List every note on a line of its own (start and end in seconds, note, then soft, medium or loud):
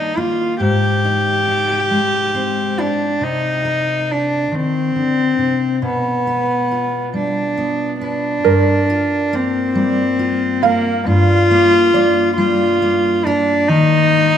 0.00 0.55 D#3 medium
0.00 0.63 G3 soft
0.00 0.16 A#3 soft
0.00 0.19 D#4 medium
0.00 0.63 G4 soft
0.00 0.56 A#4 soft
0.17 0.61 A#3 soft
0.17 0.61 F4 medium
0.60 3.16 G#2 medium
0.60 2.81 G4 medium
1.04 1.47 D#4 soft
1.48 3.17 D#4 soft
1.91 3.16 G#3 soft
2.35 3.16 C4 soft
2.78 3.25 D4 medium
2.78 3.65 G4 medium
3.21 4.51 C3 medium
3.21 4.13 D#4 medium
3.65 5.78 A#4 soft
4.12 4.57 D4 medium
4.52 4.95 D#3 soft
4.52 5.84 C4 medium
4.96 5.38 D3 soft
5.38 5.83 C3 soft
5.82 8.39 B2 medium
5.87 7.12 B3 medium
6.27 8.00 B4 soft
6.71 8.40 F4 soft
7.14 8.40 G3 soft
7.14 7.99 D4 medium
7.58 8.40 B3 soft
8.01 9.37 D4 medium
8.01 8.40 B4 soft
8.44 11.05 G2 medium
8.44 11.32 A#4 medium
8.90 10.18 F4 soft
9.33 11.51 A#3 medium
9.33 10.65 C4 medium
9.75 12.37 G3 medium
10.19 11.01 F4 soft
10.63 11.09 A#3 medium
10.63 13.26 A#4 medium
10.63 13.50 F5 medium
11.07 13.68 G2 medium
11.07 12.37 F4 medium
11.51 11.94 A#3 medium
11.94 12.82 A#3 soft
11.94 14.08 D5 medium
12.38 14.38 G3 medium
12.38 13.27 F4 medium
12.82 14.38 A#3 soft
13.25 13.69 D4 medium
13.25 14.38 A#4 medium
13.68 14.38 D#3 medium
13.68 14.38 D#4 medium